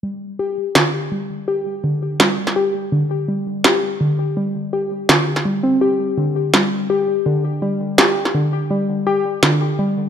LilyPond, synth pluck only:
\new Staff \with { instrumentName = "Synth pluck" } { \clef bass \time 4/4 \key c \dorian \tempo 4 = 166 g8 r8 g'8 r8 d8 r8 g8 r8 | g'8 r8 d8 r8 g8 r8 g'8 r8 | d8 r8 g8 r8 g'8 r8 d8 r8 | g8 r8 g'8 r8 d8 r8 g8 c'8 |
g'8 r8 d8 r8 g8 r8 g'8 r8 | d8 r8 g8 r8 g'8 r8 d8 r8 | g8 r8 g'8 r8 d8 r8 g8 r8 | }